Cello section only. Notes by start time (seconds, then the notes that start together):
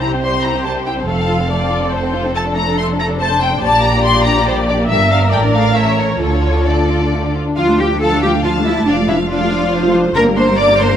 Already playing: C3
1.08 F2
3.62 A#2
4.90 G2
5.33 A2
6.21 D3
7.57 F4
7.79 G4
8.01 A4
8.22 G4
8.44 F4
8.65 E4
8.87 D4
9.08 E4
9.29 F4
10.16 A#4
10.37 C5
10.59 D5
10.80 C5